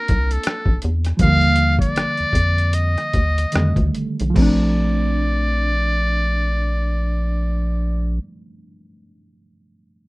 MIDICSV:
0, 0, Header, 1, 5, 480
1, 0, Start_track
1, 0, Key_signature, -2, "major"
1, 0, Tempo, 748130
1, 762, Time_signature, 4, 2, 24, 8
1, 1250, Tempo, 790514
1, 2210, Tempo, 839161
1, 5957, End_track
2, 0, Start_track
2, 0, Title_t, "Muted trumpet"
2, 0, Program_c, 0, 59
2, 0, Note_on_c, 0, 70, 78
2, 207, Note_on_c, 0, 69, 65
2, 217, Note_off_c, 0, 70, 0
2, 533, Note_off_c, 0, 69, 0
2, 783, Note_on_c, 0, 77, 95
2, 1130, Note_off_c, 0, 77, 0
2, 1164, Note_on_c, 0, 74, 82
2, 1736, Note_on_c, 0, 75, 78
2, 1745, Note_off_c, 0, 74, 0
2, 2449, Note_off_c, 0, 75, 0
2, 2696, Note_on_c, 0, 74, 80
2, 4884, Note_off_c, 0, 74, 0
2, 5957, End_track
3, 0, Start_track
3, 0, Title_t, "Reed electric piano"
3, 0, Program_c, 1, 4
3, 0, Control_c, 1, 64, 127
3, 0, Note_on_c, 1, 58, 54
3, 0, Note_on_c, 1, 60, 50
3, 0, Note_on_c, 1, 62, 59
3, 0, Note_on_c, 1, 65, 58
3, 728, Note_off_c, 1, 65, 0
3, 735, Note_off_c, 1, 58, 0
3, 741, Note_off_c, 1, 60, 0
3, 750, Note_on_c, 1, 53, 50
3, 762, Note_on_c, 1, 55, 49
3, 768, Note_off_c, 1, 62, 0
3, 771, Control_c, 1, 64, 0
3, 777, Note_on_c, 1, 58, 52
3, 789, Note_on_c, 1, 50, 61
3, 900, Control_c, 1, 64, 127
3, 2179, Note_off_c, 1, 53, 0
3, 2184, Note_off_c, 1, 55, 0
3, 2191, Note_off_c, 1, 58, 0
3, 2197, Note_off_c, 1, 50, 0
3, 2206, Note_on_c, 1, 51, 49
3, 2213, Note_on_c, 1, 55, 46
3, 2215, Control_c, 1, 64, 0
3, 2217, Note_on_c, 1, 57, 50
3, 2224, Note_on_c, 1, 50, 57
3, 2304, Control_c, 1, 64, 127
3, 2651, Note_on_c, 1, 53, 68
3, 2667, Note_off_c, 1, 57, 0
3, 2674, Note_on_c, 1, 57, 59
3, 2680, Note_off_c, 1, 51, 0
3, 2684, Note_off_c, 1, 55, 0
3, 2687, Control_c, 1, 64, 0
3, 2689, Note_off_c, 1, 50, 0
3, 2697, Note_on_c, 1, 60, 56
3, 2719, Note_on_c, 1, 62, 73
3, 2797, Control_c, 1, 64, 127
3, 4839, Note_off_c, 1, 53, 0
3, 4862, Note_off_c, 1, 57, 0
3, 4885, Note_off_c, 1, 60, 0
3, 4907, Note_off_c, 1, 62, 0
3, 5957, End_track
4, 0, Start_track
4, 0, Title_t, "Analog synth bass"
4, 0, Program_c, 2, 38
4, 67, Note_on_c, 2, 36, 86
4, 247, Note_off_c, 2, 36, 0
4, 429, Note_on_c, 2, 34, 81
4, 506, Note_off_c, 2, 34, 0
4, 542, Note_on_c, 2, 40, 86
4, 725, Note_off_c, 2, 40, 0
4, 773, Note_on_c, 2, 39, 95
4, 1157, Note_off_c, 2, 39, 0
4, 1404, Note_on_c, 2, 41, 44
4, 1439, Note_off_c, 2, 41, 0
4, 1490, Note_on_c, 2, 41, 79
4, 1870, Note_off_c, 2, 41, 0
4, 1980, Note_on_c, 2, 39, 72
4, 2169, Note_off_c, 2, 39, 0
4, 2225, Note_on_c, 2, 41, 83
4, 2326, Note_off_c, 2, 41, 0
4, 2351, Note_on_c, 2, 38, 75
4, 2427, Note_off_c, 2, 38, 0
4, 2599, Note_on_c, 2, 35, 79
4, 2672, Note_off_c, 2, 35, 0
4, 2691, Note_on_c, 2, 34, 91
4, 4879, Note_off_c, 2, 34, 0
4, 5957, End_track
5, 0, Start_track
5, 0, Title_t, "Drums"
5, 54, Note_on_c, 9, 42, 60
5, 58, Note_on_c, 9, 36, 78
5, 118, Note_off_c, 9, 42, 0
5, 122, Note_off_c, 9, 36, 0
5, 198, Note_on_c, 9, 42, 46
5, 262, Note_off_c, 9, 42, 0
5, 279, Note_on_c, 9, 42, 69
5, 302, Note_on_c, 9, 37, 99
5, 343, Note_off_c, 9, 42, 0
5, 366, Note_off_c, 9, 37, 0
5, 421, Note_on_c, 9, 36, 74
5, 485, Note_off_c, 9, 36, 0
5, 525, Note_on_c, 9, 42, 59
5, 589, Note_off_c, 9, 42, 0
5, 671, Note_on_c, 9, 42, 44
5, 683, Note_on_c, 9, 37, 31
5, 735, Note_off_c, 9, 42, 0
5, 747, Note_off_c, 9, 37, 0
5, 764, Note_on_c, 9, 42, 66
5, 765, Note_on_c, 9, 36, 84
5, 828, Note_off_c, 9, 42, 0
5, 829, Note_off_c, 9, 36, 0
5, 906, Note_on_c, 9, 42, 27
5, 970, Note_off_c, 9, 42, 0
5, 999, Note_on_c, 9, 42, 52
5, 1063, Note_off_c, 9, 42, 0
5, 1147, Note_on_c, 9, 36, 70
5, 1166, Note_on_c, 9, 42, 43
5, 1211, Note_off_c, 9, 36, 0
5, 1230, Note_off_c, 9, 42, 0
5, 1258, Note_on_c, 9, 42, 69
5, 1267, Note_on_c, 9, 37, 94
5, 1319, Note_off_c, 9, 42, 0
5, 1327, Note_off_c, 9, 37, 0
5, 1387, Note_on_c, 9, 42, 27
5, 1448, Note_off_c, 9, 42, 0
5, 1481, Note_on_c, 9, 36, 70
5, 1495, Note_on_c, 9, 42, 59
5, 1542, Note_off_c, 9, 36, 0
5, 1556, Note_off_c, 9, 42, 0
5, 1636, Note_on_c, 9, 42, 43
5, 1696, Note_off_c, 9, 42, 0
5, 1725, Note_on_c, 9, 42, 71
5, 1786, Note_off_c, 9, 42, 0
5, 1874, Note_on_c, 9, 42, 29
5, 1876, Note_on_c, 9, 37, 28
5, 1935, Note_off_c, 9, 42, 0
5, 1937, Note_off_c, 9, 37, 0
5, 1970, Note_on_c, 9, 42, 59
5, 1973, Note_on_c, 9, 36, 74
5, 2031, Note_off_c, 9, 42, 0
5, 2033, Note_off_c, 9, 36, 0
5, 2119, Note_on_c, 9, 42, 48
5, 2180, Note_off_c, 9, 42, 0
5, 2204, Note_on_c, 9, 42, 62
5, 2225, Note_on_c, 9, 37, 99
5, 2262, Note_off_c, 9, 42, 0
5, 2282, Note_off_c, 9, 37, 0
5, 2343, Note_on_c, 9, 36, 63
5, 2346, Note_on_c, 9, 42, 29
5, 2400, Note_off_c, 9, 36, 0
5, 2403, Note_off_c, 9, 42, 0
5, 2448, Note_on_c, 9, 42, 54
5, 2505, Note_off_c, 9, 42, 0
5, 2591, Note_on_c, 9, 42, 43
5, 2648, Note_off_c, 9, 42, 0
5, 2683, Note_on_c, 9, 36, 85
5, 2685, Note_on_c, 9, 49, 68
5, 2740, Note_off_c, 9, 36, 0
5, 2742, Note_off_c, 9, 49, 0
5, 5957, End_track
0, 0, End_of_file